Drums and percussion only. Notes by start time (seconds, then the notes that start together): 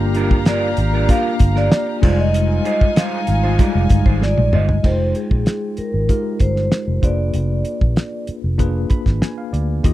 0.14 closed hi-hat
0.31 kick
0.45 snare, closed hi-hat
0.77 closed hi-hat
1.09 kick, closed hi-hat
1.39 kick, closed hi-hat
1.56 snare
1.72 snare, closed hi-hat
2.03 kick, crash
2.34 closed hi-hat
2.65 closed hi-hat
2.81 kick
2.96 snare, closed hi-hat
3.27 closed hi-hat
3.59 kick, closed hi-hat
3.89 kick, closed hi-hat
4.06 kick
4.22 snare
4.38 high tom
4.53 mid tom
4.69 floor tom
4.84 kick, crash
5.15 closed hi-hat
5.31 kick
5.46 snare, closed hi-hat
5.77 closed hi-hat
6.09 kick, closed hi-hat
6.40 kick, closed hi-hat
6.56 snare
6.72 snare, closed hi-hat
7.03 kick, closed hi-hat
7.34 closed hi-hat
7.65 closed hi-hat
7.81 kick
7.96 snare, closed hi-hat
8.27 closed hi-hat
8.59 kick, closed hi-hat
8.90 kick, closed hi-hat
9.06 kick, snare
9.22 snare, closed hi-hat
9.54 closed hi-hat
9.84 kick, closed hi-hat